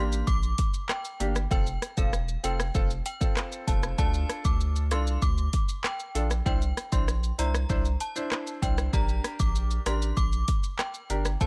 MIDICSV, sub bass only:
0, 0, Header, 1, 2, 480
1, 0, Start_track
1, 0, Tempo, 618557
1, 1174, Time_signature, 4, 2, 24, 8
1, 8898, End_track
2, 0, Start_track
2, 0, Title_t, "Sub bass"
2, 0, Program_c, 0, 38
2, 0, Note_on_c, 0, 33, 91
2, 178, Note_off_c, 0, 33, 0
2, 214, Note_on_c, 0, 34, 100
2, 418, Note_off_c, 0, 34, 0
2, 934, Note_on_c, 0, 31, 102
2, 1138, Note_off_c, 0, 31, 0
2, 1174, Note_on_c, 0, 29, 112
2, 1378, Note_off_c, 0, 29, 0
2, 1534, Note_on_c, 0, 28, 89
2, 1839, Note_off_c, 0, 28, 0
2, 1894, Note_on_c, 0, 29, 90
2, 2098, Note_off_c, 0, 29, 0
2, 2134, Note_on_c, 0, 29, 111
2, 2338, Note_off_c, 0, 29, 0
2, 2853, Note_on_c, 0, 29, 98
2, 3057, Note_off_c, 0, 29, 0
2, 3093, Note_on_c, 0, 38, 106
2, 3297, Note_off_c, 0, 38, 0
2, 3453, Note_on_c, 0, 38, 96
2, 3813, Note_on_c, 0, 36, 94
2, 3825, Note_off_c, 0, 38, 0
2, 4017, Note_off_c, 0, 36, 0
2, 4053, Note_on_c, 0, 38, 106
2, 4257, Note_off_c, 0, 38, 0
2, 4774, Note_on_c, 0, 34, 100
2, 4978, Note_off_c, 0, 34, 0
2, 5014, Note_on_c, 0, 36, 102
2, 5218, Note_off_c, 0, 36, 0
2, 5374, Note_on_c, 0, 34, 90
2, 5680, Note_off_c, 0, 34, 0
2, 5734, Note_on_c, 0, 36, 100
2, 5938, Note_off_c, 0, 36, 0
2, 5974, Note_on_c, 0, 36, 113
2, 6178, Note_off_c, 0, 36, 0
2, 6693, Note_on_c, 0, 36, 97
2, 6897, Note_off_c, 0, 36, 0
2, 6933, Note_on_c, 0, 34, 106
2, 7137, Note_off_c, 0, 34, 0
2, 7293, Note_on_c, 0, 34, 97
2, 7599, Note_off_c, 0, 34, 0
2, 7652, Note_on_c, 0, 33, 90
2, 7856, Note_off_c, 0, 33, 0
2, 7894, Note_on_c, 0, 34, 107
2, 8098, Note_off_c, 0, 34, 0
2, 8613, Note_on_c, 0, 31, 97
2, 8817, Note_off_c, 0, 31, 0
2, 8853, Note_on_c, 0, 29, 110
2, 8898, Note_off_c, 0, 29, 0
2, 8898, End_track
0, 0, End_of_file